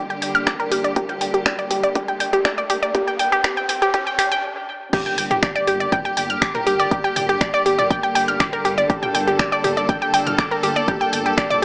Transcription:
Already playing: string section D3 G3 A#3 G4, riser
0.10 synth arpeggio sound G5, closed hi-hat
0.22 synth arpeggio sound G5, open hi-hat
0.35 synth arpeggio sound F6, closed hi-hat
0.47 synth arpeggio sound D6, finger snap, kick, closed hi-hat, mid tom
0.60 synth arpeggio sound A#4, closed hi-hat
0.71 synth arpeggio sound G4, open hi-hat
0.84 synth arpeggio sound D5, closed hi-hat
0.96 synth arpeggio sound G4, kick, closed hi-hat
1.09 synth arpeggio sound G5, closed hi-hat, mid tom
1.21 synth arpeggio sound G5, open hi-hat
1.34 synth arpeggio sound G4, closed hi-hat
1.46 synth arpeggio sound D5, finger snap, kick, closed hi-hat
1.59 synth arpeggio sound D5, closed hi-hat
1.71 synth arpeggio sound G4, mid tom, open hi-hat
1.83 synth arpeggio sound D5, closed hi-hat
1.95 synth arpeggio sound G4, kick, closed hi-hat
2.08 synth arpeggio sound G5, closed hi-hat
2.20 synth arpeggio sound G5, open hi-hat
2.33 synth arpeggio sound G4, closed hi-hat, mid tom
2.45 synth arpeggio sound D5, finger snap, kick, closed hi-hat
2.58 synth arpeggio sound D5, closed hi-hat
2.70 synth arpeggio sound G4, open hi-hat
2.83 synth arpeggio sound D5, closed hi-hat
2.95 synth arpeggio sound G4, kick, closed hi-hat, mid tom
3.07 synth arpeggio sound G5, closed hi-hat
3.19 synth arpeggio sound G5, open hi-hat
3.32 synth arpeggio sound G4, closed hi-hat
3.44 synth arpeggio sound G4, finger snap, kick, closed hi-hat
3.57 synth arpeggio sound G5, closed hi-hat, mid tom
3.69 synth arpeggio sound G5, open hi-hat
3.82 synth arpeggio sound G4, closed hi-hat
3.94 synth arpeggio sound G4, kick, closed hi-hat
4.07 synth arpeggio sound G5, closed hi-hat
4.19 synth arpeggio sound G4, finger snap, mid tom, open hi-hat
4.32 synth arpeggio sound G5, closed hi-hat
4.93 string section D3 G3 A#3 G4, synth arpeggio sound G4, kick, closed hi-hat, crash, impact
5.06 synth arpeggio sound G5, closed hi-hat
5.18 detuned saw bass G1, synth arpeggio sound G5, open hi-hat
5.31 synth arpeggio sound G4, closed hi-hat, mid tom
5.43 synth arpeggio sound D5, finger snap, kick, closed hi-hat
5.56 synth arpeggio sound D5, closed hi-hat
5.67 detuned saw bass G1, synth arpeggio sound G4, open hi-hat
5.80 synth arpeggio sound D5, closed hi-hat
5.92 synth arpeggio sound G5, kick, closed hi-hat, mid tom
6.05 synth arpeggio sound G5, closed hi-hat
6.17 detuned saw bass G1, synth arpeggio sound G5, open hi-hat
6.30 synth arpeggio sound F6, closed hi-hat
6.42 synth arpeggio sound D6, finger snap, kick, closed hi-hat
6.55 synth arpeggio sound A#4, closed hi-hat, mid tom
6.67 detuned saw bass G1, synth arpeggio sound G4, open hi-hat
6.80 synth arpeggio sound D5, closed hi-hat
6.91 synth arpeggio sound G4, kick, closed hi-hat
7.04 synth arpeggio sound G5, closed hi-hat
7.16 detuned saw bass G1, synth arpeggio sound G5, mid tom, open hi-hat
7.29 synth arpeggio sound G4, closed hi-hat
7.41 synth arpeggio sound D5, finger snap, kick, closed hi-hat
7.54 synth arpeggio sound D5, closed hi-hat
7.66 detuned saw bass G1, synth arpeggio sound G4, open hi-hat
7.79 synth arpeggio sound D5, closed hi-hat, mid tom
7.90 synth arpeggio sound G5, kick, closed hi-hat
8.03 synth arpeggio sound G5, closed hi-hat
8.15 detuned saw bass G1, synth arpeggio sound G5, open hi-hat
8.28 synth arpeggio sound F6, closed hi-hat
8.40 synth arpeggio sound D6, finger snap, kick, closed hi-hat, mid tom
8.53 synth arpeggio sound A#4, closed hi-hat
8.65 detuned saw bass G1, synth arpeggio sound G4, open hi-hat
8.78 synth arpeggio sound D5, closed hi-hat
8.90 synth arpeggio sound G4, string section A4, kick, closed hi-hat
9.03 synth arpeggio sound G5, closed hi-hat, mid tom
9.14 detuned saw bass G1, synth arpeggio sound G5, open hi-hat
9.27 synth arpeggio sound G4, closed hi-hat
9.39 synth arpeggio sound D5, finger snap, kick, closed hi-hat
9.52 synth arpeggio sound D5, closed hi-hat
9.64 detuned saw bass G1, synth arpeggio sound G4, mid tom, open hi-hat
9.77 synth arpeggio sound D5, closed hi-hat
9.89 synth arpeggio sound G5, kick, closed hi-hat
10.02 synth arpeggio sound G5, closed hi-hat
10.14 detuned saw bass G1, synth arpeggio sound G5, open hi-hat
10.27 synth arpeggio sound F6, closed hi-hat, mid tom
10.38 synth arpeggio sound D6, finger snap, kick, closed hi-hat
10.51 synth arpeggio sound A#4, closed hi-hat
10.63 detuned saw bass G1, synth arpeggio sound G4, open hi-hat
10.76 synth arpeggio sound D5, closed hi-hat
10.88 synth arpeggio sound G4, kick, closed hi-hat, mid tom
11.01 synth arpeggio sound G5, closed hi-hat
11.13 detuned saw bass G1, synth arpeggio sound G5, open hi-hat
11.26 synth arpeggio sound G4, closed hi-hat
11.38 synth arpeggio sound D5, finger snap, kick, closed hi-hat
11.50 synth arpeggio sound D5, closed hi-hat, mid tom

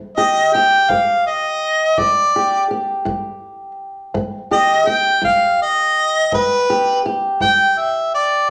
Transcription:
Already playing: steel-string acoustic guitar G2
0.17 steel-string acoustic guitar G4, harmonica D#5
0.53 steel-string acoustic guitar G4, harmonica G5
0.89 steel-string acoustic guitar G2, harmonica F5, kick
1.27 harmonica D#5
1.98 steel-string acoustic guitar G2, harmonica D5, kick
2.36 steel-string acoustic guitar G4
2.71 steel-string acoustic guitar G4
3.05 steel-string acoustic guitar G2, kick
4.14 steel-string acoustic guitar G2, kick
4.51 steel-string acoustic guitar G4, harmonica D#5
4.87 steel-string acoustic guitar G4, harmonica G5
5.22 steel-string acoustic guitar G2, harmonica F5, kick
5.62 harmonica D#5
6.32 steel-string acoustic guitar G2, harmonica B4, kick
6.70 steel-string acoustic guitar G4
7.06 steel-string acoustic guitar G4
7.41 steel-string acoustic guitar G2, harmonica G5, kick
7.78 harmonica E5
8.15 harmonica D5

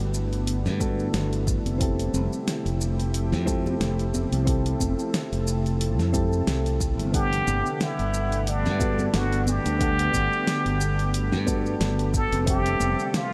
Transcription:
Already playing: ambient pad D3 G3 A3 B3 E4, synth keys B3 D4 F#4 A4
0.00 fingered electric bass G1
0.14 shaker
0.33 open hi-hat, shaker
0.47 open hi-hat, shaker
0.66 fingered electric bass G2, snare, shaker
0.80 synth keys B3 D4 F#4 A4, kick, low conga, shaker
0.99 shaker
1.14 fingered electric bass G1, snare, open hi-hat, shaker
1.33 open hi-hat, shaker
1.47 kick, shaker
1.66 fingered electric bass F1, open hi-hat, high conga, shaker
1.78 ambient pad C3 F3 G4, synth keys C4 E4 G4, kick, open hi-hat, shaker
1.83 synth keys A4
1.99 open hi-hat, shaker
2.14 fingered electric bass F1, high conga, shaker
2.33 shaker
2.48 snare, open hi-hat, shaker
2.66 fingered electric bass F1, open hi-hat, shaker
2.81 shaker
3.00 open hi-hat, shaker
3.14 open hi-hat, shaker
3.32 fingered electric bass F2, snare, shaker
3.46 synth keys C4 E4 G4 A4, kick, low conga, shaker
3.66 high conga, shaker
3.80 fingered electric bass F1, snare, open hi-hat, shaker
3.99 open hi-hat, shaker
4.14 high conga, shaker
4.32 fingered electric bass C2, open hi-hat, shaker
4.45 synth keys C4 E4 G4, ambient pad A4, kick, open hi-hat, shaker
4.49 synth keys A4
4.66 open hi-hat, shaker
4.80 fingered electric bass F1, kick, high conga, shaker
4.99 shaker
5.14 snare, open hi-hat, shaker
5.32 fingered electric bass F1, open hi-hat, shaker
5.47 shaker
5.66 open hi-hat, shaker
5.81 open hi-hat, shaker
5.99 fingered electric bass F2, snare, shaker
6.13 synth keys C4 E4 G4 A4, kick, low conga, shaker
6.33 shaker
6.47 fingered electric bass C2, snare, open hi-hat, shaker
6.66 open hi-hat, shaker
6.80 kick, shaker
6.99 fingered electric bass G1, open hi-hat, high conga, shaker
7.12 ambient pad D3 G3 B3 F#5, synth keys B3 D4 F#5, muted trumpet G4, kick, open hi-hat, shaker
7.16 synth keys A4
7.33 open hi-hat, shaker
7.47 fingered electric bass G1, high conga, shaker
7.66 shaker
7.81 muted trumpet E4, snare, open hi-hat, shaker
7.99 fingered electric bass G1, open hi-hat, shaker
8.14 shaker
8.32 open hi-hat, shaker
8.47 muted trumpet D4, open hi-hat, shaker
8.66 fingered electric bass G2, snare, shaker
8.80 synth keys B3 D4 F#4 A4, kick, low conga, shaker
8.99 high conga, shaker
9.14 fingered electric bass G1, muted trumpet F#4, snare, open hi-hat, shaker
9.32 open hi-hat, shaker
9.47 muted trumpet G4, high conga, shaker
9.66 fingered electric bass D2, open hi-hat, shaker
9.78 synth keys B3 D4 F#5, kick, open hi-hat, shaker
9.83 synth keys A4
9.99 open hi-hat, shaker
10.14 fingered electric bass G1, kick, high conga, shaker
10.33 shaker
10.47 snare, open hi-hat, shaker
10.66 fingered electric bass G1, open hi-hat, shaker
10.81 shaker
10.99 open hi-hat, shaker
11.14 open hi-hat, shaker
11.32 fingered electric bass G2, snare, shaker
11.46 synth keys B3 D4 F#4 A4, kick, low conga, shaker
11.66 shaker
11.80 fingered electric bass G1, snare, open hi-hat, shaker
11.99 open hi-hat, shaker
12.14 muted trumpet A4, kick, shaker
12.32 fingered electric bass F1, open hi-hat, high conga, shaker
12.45 ambient pad C3 F3 A3 E5, synth keys C4 G4 E5, kick, open hi-hat, shaker
12.49 muted trumpet G4, synth keys A4
12.66 open hi-hat, shaker
12.80 fingered electric bass F1, high conga, shaker
12.99 shaker
13.14 muted trumpet F4, snare, open hi-hat, shaker

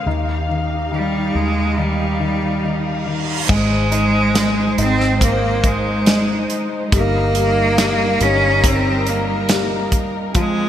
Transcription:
Already playing: string section F5
0.06 fingered electric bass D#2, felt piano D#3, string section D#4 G4
0.49 felt piano D#3
0.92 felt piano D#3, cello G3
1.34 fingered electric bass D#2, felt piano D#3, cello G#3
1.77 felt piano D#3, cello G3, reverse cymbal
2.20 felt piano D#3
2.64 felt piano D#3
3.06 felt piano D#3
3.49 fingered electric bass G#1, felt piano G#3, string section G#3 D#4 C5, cello G#3, kick, crash
3.92 felt piano D#4, closed hi-hat
4.35 felt piano G#3, snare, closed hi-hat
4.78 fingered electric bass G#1, cello C4, felt piano D#4, closed hi-hat
5.00 snare
5.21 cello A#3, kick, closed hi-hat
5.64 cello G#3, kick, closed hi-hat
6.06 felt piano G#3, snare, closed hi-hat
6.50 closed hi-hat
6.92 fingered electric bass G1, string section G3 A#4, felt piano G3, cello A#3, kick, closed hi-hat
7.35 felt piano G3, closed hi-hat
7.78 felt piano G3, snare, closed hi-hat
8.21 fingered electric bass G1, felt piano G3, cello C#4, closed hi-hat
8.64 cello C4, kick, closed hi-hat
9.07 cello A#3, closed hi-hat
9.49 felt piano G3, snare, closed hi-hat
9.92 kick, closed hi-hat
10.35 fingered electric bass F1, string section F3 C4 G#4, felt piano F3, cello G#3, kick, closed hi-hat

